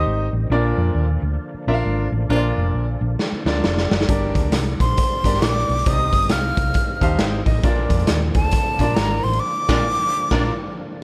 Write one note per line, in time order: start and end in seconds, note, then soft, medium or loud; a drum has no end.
0.00 0.49 D#3 medium
0.00 0.50 G3 medium
0.00 0.49 C4 medium
0.00 0.26 D#4 medium
0.00 0.50 D#4 medium
0.00 0.26 G4 medium
0.00 0.26 C5 medium
0.00 0.26 D#5 loud
0.06 0.28 G#1 medium
0.33 0.47 A1 medium
0.50 0.72 A#1 loud
0.50 1.19 A#2 medium
0.50 5.82 D3 medium
0.50 4.04 F3 medium
0.50 5.82 A#3 medium
0.50 5.82 D4 medium
0.50 1.04 D4 medium
0.50 1.05 F4 medium
0.50 1.05 A#4 medium
0.50 1.05 D5 medium
0.77 0.92 F2 medium
0.95 1.16 D#2 medium
1.22 1.36 D2 medium
1.54 muted fingered electric bass stroke soft
1.67 1.81 A#1 medium
1.67 2.05 D4 medium
1.67 2.05 F4 medium
1.67 2.05 A#4 medium
1.67 1.72 E5 medium
1.74 2.08 F5 loud
1.85 2.07 G#1 medium
2.12 2.26 A1 medium
2.29 2.51 A#1 loud
2.29 2.98 A#2 medium
2.29 2.63 A#3 medium
2.29 2.64 D4 medium
2.29 2.83 D4 medium
2.29 2.64 F4 loud
2.29 2.83 F4 medium
2.29 2.83 A#4 medium
2.29 2.37 C5 medium
2.36 2.86 D5 medium
2.56 2.70 F1 loud
2.74 2.95 A#1 medium
3.01 3.15 A#1 medium
3.19 snare medium
3.32 muted fingered electric bass stroke soft
3.45 3.60 D2 medium
3.45 3.83 D4 medium
3.45 3.84 F4 medium
3.45 3.84 A#4 medium
3.45 3.63 D5 loud
3.45 snare medium
3.64 3.85 F1 medium
3.64 4.06 D5 medium
3.64 snare medium
3.78 snare medium
3.91 4.05 F#1 medium
3.91 snare loud
4.00 snare medium
4.09 4.30 G1 loud
4.09 4.76 G2 medium
4.09 7.61 G3 medium
4.09 4.62 D4 medium
4.09 4.62 G4 medium
4.09 4.62 A#4 medium
4.09 4.62 D5 medium
4.09 kick loud
4.09 closed hi-hat medium
4.35 4.49 D2 medium
4.35 kick medium
4.35 closed hi-hat medium
4.52 4.74 C2 medium
4.52 snare loud
4.52 closed hi-hat medium
4.80 4.94 A#1 medium
4.80 5.38 C5 medium
4.80 5.44 C6 medium
4.80 kick loud
4.80 closed hi-hat medium
4.97 kick loud
4.97 closed hi-hat medium
5.10 muted fingered electric bass stroke soft
5.24 5.38 G1 medium
5.24 5.62 D4 medium
5.24 5.62 G4 medium
5.24 5.62 A#4 medium
5.24 5.62 D5 medium
5.24 kick medium
5.24 closed hi-hat medium
5.34 snare soft
5.42 5.63 A#1 medium
5.42 5.86 D5 medium
5.42 5.90 D6 loud
5.42 snare loud
5.42 closed hi-hat medium
5.69 5.83 B1 medium
5.69 open hi-hat soft
5.79 closed hi-hat medium
5.85 6.08 C2 loud
5.85 6.54 C3 medium
5.85 7.62 D#3 medium
5.85 7.62 C4 medium
5.85 7.62 D#4 medium
5.85 6.40 D#4 medium
5.85 6.40 G4 medium
5.85 6.40 C5 medium
5.85 5.93 D5 medium
5.85 6.31 D#5 medium
5.85 6.33 D#6 loud
5.85 kick loud
5.85 closed hi-hat medium
5.93 6.43 D#5 medium
6.13 6.27 G1 medium
6.13 kick medium
6.13 closed hi-hat medium
6.22 closed hi-hat soft
6.29 6.51 C2 medium
6.29 7.20 F5 medium
6.29 7.20 F6 medium
6.29 snare loud
6.29 closed hi-hat loud
6.57 6.71 C2 loud
6.57 kick loud
6.57 closed hi-hat medium
6.74 kick loud
6.74 closed hi-hat medium
6.88 muted fingered electric bass stroke soft
7.01 7.16 D#2 loud
7.01 7.39 D#4 medium
7.01 7.40 G4 medium
7.01 7.40 C5 medium
7.01 7.40 F5 loud
7.01 7.19 A5 medium
7.01 kick medium
7.01 closed hi-hat medium
7.19 7.41 G#1 medium
7.19 7.45 G5 medium
7.19 snare loud
7.19 closed hi-hat medium
7.46 7.60 A1 medium
7.46 7.63 D#5 medium
7.46 kick medium
7.46 open hi-hat soft
7.62 7.85 A#1 loud
7.62 8.32 A#2 medium
7.62 11.03 D3 medium
7.62 11.03 F3 medium
7.62 11.03 A#3 medium
7.62 11.03 D4 medium
7.62 8.17 D4 medium
7.62 8.17 F4 medium
7.62 8.17 A#4 medium
7.62 8.17 D5 medium
7.62 kick loud
7.62 closed hi-hat medium
7.90 8.04 F2 loud
7.90 kick loud
7.90 closed hi-hat medium
8.00 closed hi-hat soft
8.07 8.30 D#2 medium
8.07 snare loud
8.07 closed hi-hat loud
8.34 8.49 D2 medium
8.34 8.93 A4 medium
8.34 8.96 A5 medium
8.34 kick loud
8.34 closed hi-hat medium
8.51 kick loud
8.51 closed hi-hat medium
8.67 muted fingered electric bass stroke soft
8.79 8.93 A#1 medium
8.79 9.17 D4 medium
8.79 9.18 F4 medium
8.79 9.18 A#4 medium
8.79 9.18 D5 medium
8.79 kick medium
8.79 closed hi-hat medium
8.94 9.19 G#1 loud
8.94 9.23 A#4 medium
8.94 9.25 A#5 loud
8.94 snare loud
8.94 closed hi-hat medium
9.21 9.38 A1 medium
9.21 9.40 C5 medium
9.21 9.41 C6 medium
9.21 open hi-hat soft
9.33 closed hi-hat medium
9.40 10.74 D6 loud
9.69 9.81 A#1 loud
9.69 9.82 A#2 loud
9.69 9.78 A#3 medium
9.69 9.78 D4 loud
9.69 9.82 D4 loud
9.69 9.78 F4 loud
9.69 9.82 F4 loud
9.69 9.82 A#4 medium
9.69 kick loud
9.69 snare loud
9.69 crash medium
9.76 9.85 D5 medium
10.30 10.49 A#1 loud
10.30 10.45 A#3 medium
10.30 10.44 D4 medium
10.30 10.50 D4 medium
10.30 10.45 F4 medium
10.30 10.50 F4 loud
10.30 10.50 A#4 loud
10.30 10.50 D5 loud
10.30 kick loud
10.30 snare loud